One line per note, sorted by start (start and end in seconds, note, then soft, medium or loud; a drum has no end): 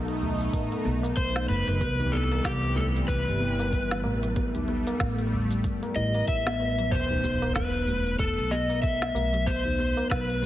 0.00 0.49 B1 loud
0.00 1.77 B2 medium
0.00 1.79 A3 medium
0.00 1.78 D#4 medium
0.08 closed hi-hat soft
0.08 shaker soft
0.21 0.84 A3 medium
0.21 tabla ge medium
0.41 shaker medium
0.53 0.68 A1 medium
0.53 kick loud
0.53 closed hi-hat medium
0.53 tabla tin soft
0.53 shaker medium
0.71 closed hi-hat soft
0.71 tabla na medium
0.71 shaker soft
0.85 1.12 B1 medium
0.85 1.03 B3 medium
1.03 closed hi-hat soft
1.03 tabla na medium
1.03 shaker medium
1.17 1.44 B1 medium
1.17 1.47 C5 loud
1.17 kick medium
1.17 closed hi-hat medium
1.17 shaker medium
1.36 snare medium
1.36 shaker soft
1.49 1.64 F#1 loud
1.49 1.66 A3 medium
1.49 2.15 B4 loud
1.49 tabla tin soft
1.67 1.78 F#1 loud
1.67 1.80 F#3 medium
1.67 closed hi-hat soft
1.67 tabla na soft
1.67 shaker medium
1.80 2.41 C2 loud
1.80 4.34 C3 medium
1.80 4.34 E3 medium
1.80 4.34 G3 medium
1.80 1.99 B3 loud
1.80 kick loud
1.80 closed hi-hat medium
1.80 tabla tin soft
1.80 shaker soft
1.99 2.11 D#4 medium
1.99 tabla ge medium
1.99 shaker soft
2.12 2.31 B3 loud
2.12 2.45 A4 medium
2.31 closed hi-hat soft
2.31 tabla na medium
2.31 shaker medium
2.44 3.05 C2 loud
2.44 2.77 G4 medium
2.44 kick loud
2.44 snare medium
2.44 closed hi-hat medium
2.44 shaker medium
2.64 closed hi-hat soft
2.64 shaker soft
2.76 3.39 A3 medium
2.76 2.85 A4 medium
2.76 tabla ge medium
2.96 shaker medium
3.08 3.24 C2 loud
3.08 4.00 B4 medium
3.08 kick loud
3.08 closed hi-hat medium
3.08 shaker medium
3.27 4.04 G1 loud
3.27 shaker soft
3.40 3.58 B3 loud
3.59 closed hi-hat soft
3.59 tabla na medium
3.59 tabla tin soft
3.59 shaker medium
3.73 kick loud
3.73 closed hi-hat medium
3.73 shaker soft
3.91 snare medium
3.91 shaker soft
4.04 4.81 A1 medium
4.04 4.21 A3 medium
4.04 tabla na medium
4.22 4.36 F#3 medium
4.22 closed hi-hat soft
4.22 tabla tin medium
4.22 shaker medium
4.35 6.89 G3 medium
4.35 6.89 A3 medium
4.35 4.54 B3 medium
4.35 kick loud
4.35 closed hi-hat medium
4.35 tabla tin medium
4.35 shaker medium
4.54 4.67 D#4 medium
4.54 closed hi-hat soft
4.54 tabla ge medium
4.54 shaker soft
4.68 4.86 B3 loud
4.87 closed hi-hat soft
4.87 tabla na medium
4.87 shaker medium
5.00 5.60 A1 medium
5.00 kick loud
5.00 snare medium
5.00 closed hi-hat medium
5.00 shaker medium
5.19 closed hi-hat soft
5.19 shaker soft
5.32 5.94 A3 medium
5.32 tabla ge medium
5.51 closed hi-hat soft
5.51 shaker medium
5.64 kick loud
5.64 closed hi-hat medium
5.64 tabla tin soft
5.64 shaker soft
5.83 closed hi-hat soft
5.83 tabla na medium
5.83 shaker soft
5.96 6.23 A1 medium
5.96 6.13 E4 medium
5.96 6.25 D#5 medium
6.14 closed hi-hat soft
6.14 tabla na medium
6.14 tabla tin soft
6.14 shaker medium
6.28 6.88 A1 medium
6.28 6.94 E5 medium
6.28 kick medium
6.28 closed hi-hat medium
6.28 shaker soft
6.46 6.54 B3 loud
6.46 snare medium
6.46 closed hi-hat soft
6.46 shaker soft
6.60 6.77 B4 medium
6.60 tabla tin medium
6.78 6.90 F#3 medium
6.78 closed hi-hat soft
6.78 tabla na soft
6.78 shaker medium
6.91 7.51 E1 loud
6.91 7.09 B3 medium
6.91 7.55 C5 medium
6.91 kick loud
6.91 closed hi-hat medium
6.91 impact medium
6.91 tabla tin soft
6.91 shaker soft
7.10 7.22 D#4 medium
7.10 tabla ge medium
7.24 7.41 B3 loud
7.24 shaker medium
7.42 closed hi-hat soft
7.42 tabla na medium
7.42 shaker soft
7.55 8.15 E1 medium
7.55 8.15 B4 medium
7.55 kick loud
7.55 snare medium
7.55 closed hi-hat medium
7.55 shaker soft
7.74 closed hi-hat soft
7.74 shaker soft
7.87 8.50 A3 medium
7.87 tabla ge medium
7.87 shaker medium
8.07 shaker soft
8.19 8.34 E1 loud
8.19 8.52 A4 medium
8.19 kick loud
8.19 closed hi-hat medium
8.19 shaker soft
8.38 9.11 B1 loud
8.38 shaker soft
8.51 8.69 B3 loud
8.51 8.81 D#5 medium
8.51 shaker medium
8.69 closed hi-hat soft
8.69 tabla na medium
8.69 tabla tin soft
8.69 shaker soft
8.82 9.48 E5 loud
8.82 kick loud
8.82 closed hi-hat medium
8.82 shaker soft
9.02 snare medium
9.02 shaker soft
9.15 9.92 B1 medium
9.15 9.32 A3 medium
9.15 tabla na medium
9.15 shaker medium
9.33 9.46 F#3 medium
9.33 closed hi-hat soft
9.33 tabla tin medium
9.33 shaker soft
9.46 9.65 B3 loud
9.46 10.10 C5 medium
9.46 kick loud
9.46 closed hi-hat medium
9.46 tabla tin soft
9.46 shaker soft
9.65 9.77 D#4 medium
9.65 tabla ge medium
9.79 9.96 B3 loud
9.79 shaker medium
9.97 closed hi-hat soft
9.97 tabla na medium
9.97 shaker soft
10.10 10.46 B1 medium
10.10 10.46 B4 medium
10.10 kick loud
10.10 snare medium
10.10 closed hi-hat medium
10.10 shaker soft
10.30 closed hi-hat soft
10.30 shaker soft
10.43 10.46 A3 medium
10.43 tabla ge medium